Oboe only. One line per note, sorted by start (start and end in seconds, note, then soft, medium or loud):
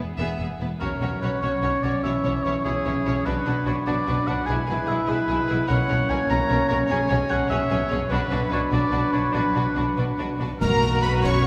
0.80 1.19 A#4 medium
1.22 1.41 B4 medium
1.41 1.84 C#5 medium
1.83 2.03 D5 medium
2.03 2.45 E5 medium
2.43 2.64 C#5 medium
2.64 3.27 G#4 medium
3.25 3.66 B4 medium
3.67 3.76 C#5 medium
3.86 4.29 D5 medium
4.27 4.47 F#5 medium
4.46 4.89 G#5 medium
4.88 5.11 E5 medium
5.09 5.67 B4 medium
5.68 6.11 F#5 loud
6.10 6.30 G#5 medium
6.30 6.68 A#5 loud
6.69 6.78 A#5 medium
6.91 7.32 G#5 loud
7.30 7.49 F#5 medium
7.50 7.89 E5 loud
8.10 8.49 B4 medium
8.53 8.62 C#5 medium
8.73 9.12 D5 medium
9.13 9.35 C#5 medium
9.33 9.97 B4 medium
10.59 11.02 A#4 medium
11.01 11.21 B4 medium
11.22 11.47 C#5 medium